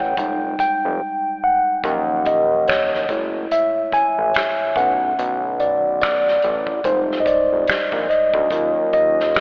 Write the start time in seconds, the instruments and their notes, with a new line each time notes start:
Already playing: analog synth bass A1, tine electric piano D3 A3 C#4 C#5 F#5 G5
0.00 kick
0.17 analog synth bass F1, tine electric piano G3 G#3 D#4, kick, closed hi-hat
0.59 analog synth bass F1, tine electric piano G5, kick, closed hi-hat
0.85 analog synth bass F1
1.44 tine electric piano F#5
1.84 analog synth bass D#2, tine electric piano F3 F#3 C#4, kick, closed hi-hat
2.25 tine electric piano D#5, kick, closed hi-hat
2.68 tine electric piano C#5, finger snap, snare, closed hi-hat
2.94 snare
3.09 analog synth bass F#1, tine electric piano G#3 A3 E4, kick, closed hi-hat
3.51 tine electric piano E5, closed hi-hat
3.92 analog synth bass A1, tine electric piano G#5, kick, closed hi-hat
4.18 analog synth bass A1
4.34 finger snap, snare, closed hi-hat
4.76 analog synth bass B1, tine electric piano D3 A3 C#4 F#5, kick, closed hi-hat
5.19 analog synth bass B1, closed hi-hat
5.60 tine electric piano D5, closed hi-hat
6.01 tine electric piano D5, finger snap, snare, closed hi-hat
6.28 snare
6.42 analog synth bass A1, closed hi-hat
6.67 kick
6.84 analog synth bass F1, tine electric piano G3 G#3 D#4 C5, kick, closed hi-hat
7.11 snare
7.20 tine electric piano D#5
7.26 analog synth bass F1, tine electric piano D5, kick, closed hi-hat
7.52 analog synth bass F1
7.68 analog synth bass A#1, finger snap, snare, closed hi-hat
7.92 analog synth bass A#1, kick
8.10 tine electric piano D#5, closed hi-hat
8.34 analog synth bass D2, kick
8.51 analog synth bass D#2, tine electric piano F#3 C#4 F4, kick, closed hi-hat
8.93 tine electric piano D#5, kick, closed hi-hat
9.20 snare
9.35 finger snap, snare, closed hi-hat